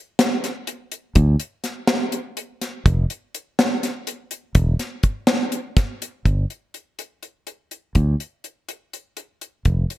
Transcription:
0.19 snare, closed hi-hat
0.44 snare, closed hi-hat
0.67 closed hi-hat
0.92 closed hi-hat
1.15 fingered electric bass D2, kick, closed hi-hat
1.40 closed hi-hat
1.64 snare, closed hi-hat
1.87 snare, closed hi-hat
2.12 closed hi-hat
2.37 closed hi-hat
2.62 snare, closed hi-hat
2.86 fingered electric bass F1, kick, closed hi-hat
3.10 closed hi-hat
3.35 closed hi-hat
3.59 snare, closed hi-hat
3.83 snare, closed hi-hat
4.07 closed hi-hat
4.31 closed hi-hat
4.55 fingered electric bass E1, kick, closed hi-hat
4.79 snare, closed hi-hat
5.03 kick, closed hi-hat
5.27 snare, closed hi-hat
5.52 closed hi-hat
5.77 kick, snare, closed hi-hat
6.02 closed hi-hat
6.25 fingered electric bass G1, kick, closed hi-hat
6.50 closed hi-hat
6.74 closed hi-hat
6.99 closed hi-hat
7.23 closed hi-hat
7.47 closed hi-hat
7.71 closed hi-hat
7.95 fingered electric bass D2, kick, closed hi-hat
8.20 closed hi-hat
8.44 closed hi-hat
8.69 closed hi-hat
8.93 closed hi-hat
9.17 closed hi-hat
9.41 closed hi-hat
9.65 fingered electric bass F1, kick, closed hi-hat
9.90 closed hi-hat

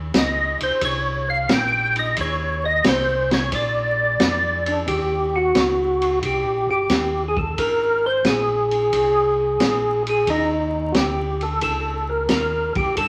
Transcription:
Already playing: tonewheel organ D#2
0.14 tonewheel organ C#2 D#5, kick, snare, hi-hat pedal, ride
0.60 tonewheel organ C#2 C5, ride
0.81 tonewheel organ C2 C#5, kick, ride
1.30 tonewheel organ F5
1.49 tonewheel organ A#1 G5, kick, snare, hi-hat pedal, ride
1.96 tonewheel organ D#5, ride
2.16 tonewheel organ D#2, kick, ride
2.21 tonewheel organ C#5
2.65 tonewheel organ D#5
2.84 tonewheel organ C2 C5, kick, snare, hi-hat pedal, ride
3.31 tonewheel organ C#5, snare, ride
3.52 tonewheel organ A#1 D5, kick, ride
4.20 tonewheel organ F2, kick, snare, hi-hat pedal, ride
4.66 tonewheel organ D4, ride
4.87 tonewheel organ D#2 G4, kick, ride
5.36 tonewheel organ F#4
5.55 tonewheel organ C#2, kick, snare, hi-hat pedal, ride
6.02 ride
6.22 tonewheel organ C2 G4, kick, ride
6.44 tonewheel organ A#1
6.67 tonewheel organ G1 G4
6.89 tonewheel organ D#2, kick, snare, hi-hat pedal, ride
7.28 tonewheel organ G#4
7.37 tonewheel organ A4, kick
7.57 tonewheel organ G#1 A#4, kick, ride
8.06 tonewheel organ C5
8.25 tonewheel organ A#1 G#4, kick, snare, hi-hat pedal, ride
8.71 ride
8.92 tonewheel organ C2, kick, ride
9.60 tonewheel organ A#1, kick, snare, hi-hat pedal, ride
10.07 tonewheel organ G#4, ride
10.27 tonewheel organ D#2 D#4, kick, ride
10.92 tonewheel organ D2 F#4, kick, snare, hi-hat pedal, ride
10.96 tonewheel organ G4
11.41 tonewheel organ A4, ride
11.61 tonewheel organ C#2 A4, kick, ride
12.10 tonewheel organ A#4
12.29 tonewheel organ D#2 A#4, kick, snare, hi-hat pedal, ride
12.75 tonewheel organ D#2 G4, kick, ride
12.97 tonewheel organ G2 A4, kick, ride

